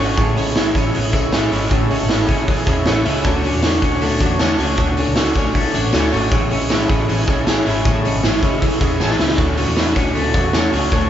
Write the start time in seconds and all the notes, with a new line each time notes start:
Already playing: D3 A3 C#4 D4 F#4
0.00 G#1 A3 C#4 F#4 C#5
0.17 A1 A2 E3 G#3 C#4 E4 G#4 A4 C#5, kick, hi-hat pedal, open hi-hat
0.35 G#3 C#4 E4 G#4 A4 C#5, hi-hat pedal, open hi-hat
0.47 B1
0.55 A2 E3 G#3 C#4 E4 G#4 A4 C#5, snare, hi-hat pedal, open hi-hat
0.74 A1 G#3 C#4 E4 G#4 A4 C#5, kick, hi-hat pedal, open hi-hat
0.93 A1 E3 G#3 C#4 E4 G#4 A4 C#5, hi-hat pedal, open hi-hat
1.12 B1 G#3 C#4 E4 G#4 A4 C#5, kick, hi-hat pedal, open hi-hat
1.32 A2 E3 G#3 C#4 E4 G#4 A4 C#5, snare, hi-hat pedal, open hi-hat
1.51 G#1 G#3 C#4 E4 G#4 A4 C#5, hi-hat pedal, open hi-hat
1.69 A1 A2 E3 G#3 C#4 E4 G#4 A4 C#5, kick, hi-hat pedal, open hi-hat
1.89 G#3 C#4 E4 G#4 A4 C#5, hi-hat pedal, open hi-hat
2.01 G#1
2.09 A2 E3 G#3 C#4 E4 G#4 A4 C#5, snare, hi-hat pedal, open hi-hat
2.27 F#1 G#3 C#4 E4 G#4 A4 C#5, kick, hi-hat pedal, open hi-hat
2.47 E3 G#3 C#4 E4 G#4 A4 C#5, kick, hi-hat pedal, open hi-hat
2.66 E1 G#3 C#4 E4 G#4 A4 C#5 A5, kick, hi-hat pedal, open hi-hat
2.85 A1 A2 E3 G#3 C#4 E4 G#4 A4 C#5 F#5, snare, hi-hat pedal, open hi-hat
3.05 C#2 G#3 C#4 E4 G#4 A4 C#5 E5, hi-hat pedal, open hi-hat
3.24 D2 D3 A3 C#4 D4 F#4 C#5, kick, hi-hat pedal, open hi-hat, tambourine
3.43 C#4 D4 F#4 C#5, hi-hat pedal, open hi-hat, tambourine
3.48 A3
3.53 E2
3.63 D3 A3 C#4 D4 F#4 C#5, snare, hi-hat pedal, open hi-hat, tambourine
3.81 D2 C#4 D4 F#4 C#5, kick, hi-hat pedal, open hi-hat, tambourine
3.85 A3
4.01 D2 D3 A3 C#4 D4 F#4 C#5, hi-hat pedal, open hi-hat, tambourine
4.20 E2 A3 C#4 D4 F#4 C#5, kick, hi-hat pedal, open hi-hat
4.39 D3 A3 C#4 D4 F#4 C#5, snare, hi-hat pedal, open hi-hat, tambourine
4.58 C#2 A3 C#4 D4 F#4 C#5, hi-hat pedal, open hi-hat, tambourine
4.77 D2 D3 A3 C#4 D4 F#4 C#5, kick, hi-hat pedal, open hi-hat, tambourine
4.97 A3 C#4 D4 F#4 C#5, hi-hat pedal, open hi-hat, tambourine
5.08 C#2
5.16 D3 A3 C#4 D4 F#4 C#5, snare, hi-hat pedal, open hi-hat, tambourine
5.33 B1 C#4 D4 F#4 C#5, kick, hi-hat pedal, open hi-hat, tambourine
5.38 A3
5.54 D3 A3 C#4 D4 F#4 C#5, kick, hi-hat pedal, open hi-hat, tambourine
5.58 F#4
5.73 A1 A3 C#4 D4 F#4 C#5 E5, hi-hat pedal, open hi-hat, tambourine
5.92 D2 D3 A3 C#4 D4 F#4 C#5 F#5, snare, hi-hat pedal, open hi-hat, tambourine
6.10 G#1 A3 C#4 D4 F#4 C#5 A5, hi-hat pedal, open hi-hat, tambourine
6.31 A1 A2 E3 G#3 C#4 E4 G#4 A4 C#5, kick, hi-hat pedal, open hi-hat
6.50 G#3 C#4 E4 G#4 A4 C#5, hi-hat pedal, open hi-hat, tambourine
6.61 B1
6.69 A2 E3 G#3 C#4 E4 G#4 A4 C#5, snare, hi-hat pedal, open hi-hat, tambourine
6.88 A1 G#3 C#4 E4 G#4 A4 C#5, kick, hi-hat pedal, open hi-hat, tambourine
7.08 A1 E3 G#3 C#4 E4 G#4 A4 C#5, hi-hat pedal, open hi-hat, tambourine
7.27 G#3 C#4 E4 G#4 A4 C#5, kick, hi-hat pedal, open hi-hat, tambourine
7.46 A2 E3 G#3 C#4 E4 G#4 A4 C#5, snare, hi-hat pedal, open hi-hat, tambourine
7.65 G#1 G#3 C#4 E4 G#4 A4 C#5, hi-hat pedal, open hi-hat, tambourine
7.85 A1 A2 E3 G#3 C#4 E4 G#4 A4 C#5, kick, hi-hat pedal, open hi-hat, tambourine
8.04 G#3 C#4 E4 G#4 A4 C#5, hi-hat pedal, open hi-hat, tambourine
8.15 G#1
8.22 A2 E3 G#3 C#4 E4 G#4 A4 C#5, snare, hi-hat pedal, open hi-hat, tambourine
8.41 F#1 G#3 C#4 E4 G#4 A4 C#5, kick, hi-hat pedal, open hi-hat, tambourine
8.61 E3 G#3 C#4 E4 G#4 A4 C#5, kick, hi-hat pedal, open hi-hat, tambourine
8.80 E1 G#3 C#4 E4 G#4 A4 C#5 E5, kick, hi-hat pedal, open hi-hat, tambourine
8.99 A1 A2 E3 G#3 C#4 E4 G#4 A4 C#5 A5, snare, tambourine
9.10 snare
9.18 C#2 G#3 C#4 E4 G#4 A4 C#5, snare, tambourine
9.28 snare
9.37 D2 D3 A3 C#4 D4 F#4 C#5, kick, hi-hat pedal, open hi-hat, tambourine
9.57 A3 B3 C#4 D4 F#4 C#5, hi-hat pedal, open hi-hat, tambourine
9.67 E2 C#4
9.75 D3 A3 C#4 D4 E4 F#4 C#5, snare, hi-hat pedal, open hi-hat, tambourine
9.87 F#4
9.94 D2 C#4 D4 F#4 C#5, kick, hi-hat pedal, open hi-hat, tambourine
9.99 A3
10.14 D2 D3 A3 C#4 D4 F#4 C#5, hi-hat pedal, open hi-hat, tambourine
10.18 F#4
10.33 E2 A3 C#4 D4 F#4 C#5, kick, hi-hat pedal, open hi-hat
10.53 D3 A3 C#4 D4 F#4 C#5, snare, hi-hat pedal, open hi-hat, tambourine
10.72 C#2 A3 C#4 D4 F#4 C#5, hi-hat pedal, open hi-hat, tambourine
10.91 D2 D3 A3 C#4 D4 F#4 C#5, kick, hi-hat pedal, open hi-hat